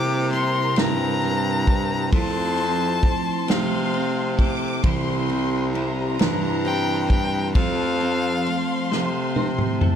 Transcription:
0.00 0.73 C3 loud
0.00 2.13 C3 medium
0.00 0.30 G3 soft
0.00 0.78 G3 medium
0.00 1.22 A#3 medium
0.00 0.31 C4 soft
0.00 0.31 E4 medium
0.00 0.32 E4 medium
0.00 2.09 E4 medium
0.00 0.32 A#4 medium
0.00 2.10 A#4 medium
0.00 7.51 C5 medium
0.00 2.10 G5 medium
0.00 2.08 A#5 medium
0.00 0.28 D6 loud
0.31 0.76 G3 medium
0.31 0.76 C4 medium
0.31 0.76 E4 medium
0.31 0.75 A#4 medium
0.31 0.80 C6 loud
0.31 ride soft
0.76 2.09 G2 medium
0.76 1.23 C3 medium
0.76 1.23 E3 medium
0.76 1.21 G3 medium
0.76 1.22 C4 medium
0.76 1.22 E4 medium
0.76 1.22 A#4 medium
0.76 2.16 A#5 loud
0.76 snare loud
0.76 ride medium
1.22 1.67 G3 medium
1.22 2.22 A#3 medium
1.22 1.67 C4 medium
1.22 1.66 E4 medium
1.22 1.65 A#4 medium
1.22 ride soft
1.66 2.22 G3 medium
1.66 2.11 E4 soft
1.66 2.12 A#4 medium
1.66 kick medium
1.66 ride soft
2.11 3.17 F2 loud
2.11 2.57 F3 medium
2.11 4.81 F3 medium
2.11 2.58 A3 medium
2.11 2.58 C4 medium
2.11 2.57 E4 medium
2.11 2.56 C5 medium
2.11 4.81 A5 medium
2.11 3.51 A5 loud
2.11 3.02 C6 loud
2.11 kick loud
2.11 ride medium
2.58 3.95 C4 medium
2.58 3.02 E4 soft
2.58 ride soft
3.02 3.48 A3 medium
3.02 3.48 C4 medium
3.02 3.48 E4 medium
3.02 3.47 C5 medium
3.02 4.35 C6 loud
3.02 kick medium
3.02 ride soft
3.48 4.80 C3 loud
3.48 3.94 F3 medium
3.48 3.92 A3 medium
3.48 3.92 C4 medium
3.48 3.93 C5 medium
3.48 4.51 F5 medium
3.48 snare loud
3.48 ride medium
3.93 4.38 A3 medium
3.93 4.39 C4 medium
3.93 4.37 C5 medium
3.93 ride soft
4.38 4.93 A3 medium
4.38 4.83 C4 soft
4.38 4.83 E4 soft
4.38 4.83 C5 medium
4.38 4.84 D6 loud
4.38 kick medium
4.38 ride soft
4.83 6.15 C2 loud
4.83 5.29 C3 medium
4.83 5.29 E3 medium
4.83 5.29 G3 medium
4.83 5.28 C4 medium
4.83 5.27 E4 medium
4.83 7.53 G4 medium
4.83 5.27 C5 loud
4.83 5.75 C6 loud
4.83 7.53 C6 medium
4.83 kick loud
4.83 ride medium
5.29 5.72 G3 medium
5.29 5.73 C4 medium
5.29 5.74 E4 medium
5.29 5.74 C5 medium
5.29 ride soft
5.72 6.19 G3 medium
5.72 6.18 C4 medium
5.72 6.18 E4 medium
5.72 6.17 C5 medium
5.72 7.54 A#5 loud
5.72 ride soft
6.19 7.51 G2 loud
6.19 6.65 C3 medium
6.19 6.65 E3 medium
6.19 6.63 G3 medium
6.19 6.64 C4 medium
6.19 6.65 E4 medium
6.19 6.64 C5 medium
6.19 snare loud
6.19 ride medium
6.64 7.09 G3 medium
6.64 7.10 C4 medium
6.64 7.09 E4 medium
6.64 7.08 C5 medium
6.64 7.07 G5 loud
6.64 ride soft
7.09 7.56 G3 soft
7.09 7.55 C4 soft
7.09 7.55 E4 soft
7.09 7.55 C5 medium
7.09 7.52 G5 loud
7.09 kick medium
7.09 ride soft
7.54 8.60 F2 loud
7.54 8.01 F3 medium
7.54 9.96 F3 medium
7.54 8.01 A3 medium
7.54 8.01 C4 medium
7.54 9.96 C5 medium
7.54 7.99 C5 medium
7.54 9.32 F5 loud
7.54 8.41 A5 medium
7.54 9.96 A5 medium
7.54 kick loud
7.54 ride medium
8.01 8.47 C4 soft
8.01 8.46 C5 medium
8.01 ride soft
8.44 8.92 A3 medium
8.44 8.91 C4 medium
8.44 9.77 C6 medium
8.44 ride soft
8.49 8.91 C5 medium
8.91 9.96 C3 medium
8.91 9.38 F3 medium
8.91 9.35 A3 medium
8.91 9.36 C4 medium
8.91 9.37 C5 medium
8.91 snare medium
9.36 9.81 A3 medium
9.36 9.82 C4 medium
9.36 9.82 E4 medium
9.36 9.81 C5 medium
9.36 high tom medium
9.58 mid tom medium
9.81 9.96 A3 medium
9.81 9.96 C4 soft
9.81 9.96 E4 soft
9.81 9.96 C5 medium
9.81 9.96 A5 medium
9.81 mid tom loud

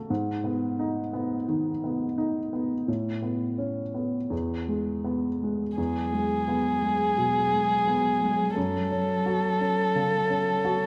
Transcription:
0.00 0.12 C#3 soft
0.00 0.12 A3 soft
0.00 0.12 F#4 soft
0.10 1.45 G#2 soft
0.44 0.99 B3 soft
0.79 1.35 D#4 soft
1.13 1.69 B3 soft
1.48 2.04 D#3 soft
1.84 2.39 B3 soft
2.18 2.74 D#4 soft
2.53 2.88 B3 soft
2.88 4.28 A2 soft
3.22 3.80 B3 soft
3.58 4.17 C#4 soft
3.94 4.31 B3 soft
4.30 5.73 E2 soft
4.68 5.27 G#3 soft
5.05 5.63 B3 soft
5.43 5.78 G#3 soft
5.76 7.13 E2 soft
5.76 10.86 F#3 medium
5.76 8.52 G#4 soft
6.13 6.69 G#3 soft
6.48 7.03 B3 soft
6.82 7.38 G#3 soft
7.18 7.73 B2 soft
7.53 8.08 G#3 soft
7.87 8.42 B3 soft
8.22 8.57 G#3 soft
8.56 9.91 F#2 soft
8.56 10.86 A4 soft
8.91 9.47 C#4 soft
9.26 9.81 F#4 soft
9.60 10.16 C#4 soft
9.95 10.51 C#3 soft
10.30 10.85 C#4 soft
10.65 10.86 F#4 soft

